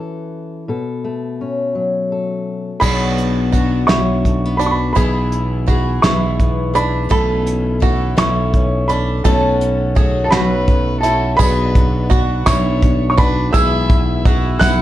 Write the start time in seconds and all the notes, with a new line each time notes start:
Already playing: E3 C#4 E4 A4
0.68 B2 A4
1.04 A3
1.41 C#4
1.75 F#3
2.12 A4
2.80 B1 B2 F#3 B3 D4 F#4 G#4 B5, kick, crash
3.18 closed hi-hat
3.52 F#3 B3 D4 F#4, kick, closed hi-hat
3.87 B1 B2 F#3 B3 D4 E4 F#4 C#6, snare, closed hi-hat
4.25 A3, kick, closed hi-hat
4.45 B3
4.57 D4 F#4 B5, closed hi-hat
4.62 B3 D4
4.66 C#6
4.71 B5
4.93 B1 B2 E3 B3 E4 G#4 B5, kick, closed hi-hat
5.32 closed hi-hat
5.66 E3 B3 E4 F#4 G#4, kick, closed hi-hat
6.02 B1 B2 E3 B3 E4 G#4 C#6, snare, closed hi-hat
6.40 B3, kick, closed hi-hat
6.74 B3 D4 E4 G#4 B5, closed hi-hat
7.09 B1 B2 E3 A3 C#4 A4 B5, kick, closed hi-hat
7.46 closed hi-hat
7.80 E3 A3 C#4 E4 F#4 A4, kick, closed hi-hat
8.17 B1 B2 E3 A3 C#4 E4 A4 C#6, snare, closed hi-hat
8.54 C#4, kick, closed hi-hat
8.88 A3 C#4 D4 A4 B5, closed hi-hat
9.24 B1 B2 F#3 A3 C#4 F#4 A4 A5, kick, closed hi-hat
9.28 A4
9.61 closed hi-hat
9.95 F#3 A3 C#4 F#4 G#4, kick, closed hi-hat
10.24 A4 A5
10.31 B1 B2 F#3 A3 C#4 F#4 B4 B5, snare, closed hi-hat
10.68 A3, kick, closed hi-hat
11.00 E4 A4 A5
11.04 A3 C#4 F#4, closed hi-hat
11.36 B1 B2 F#3 B3 G#4 B4 B5, kick, closed hi-hat
11.40 B3 D4 F#4 B4, tambourine
11.75 kick, closed hi-hat
12.10 F#3 B3 D4 F#4, kick, closed hi-hat
12.44 B1 B2 F#3 B3 D4 E4 F#4 C#5 C#6, kick, snare, closed hi-hat, tambourine
12.83 kick, closed hi-hat, tambourine
13.10 C#5 C#6
13.18 B3 D4 F#4 B4 B5, kick, closed hi-hat
13.53 B1 B2 E3 G#3 B3 E4 G#4 B4 E5 E6, kick, closed hi-hat, tambourine
13.90 kick, closed hi-hat
14.25 E3 B3 E4 F#4 G#4, kick, closed hi-hat
14.59 B1 B2 E3 B3 E4 G#4 F#5 F#6, kick, snare, closed hi-hat, tambourine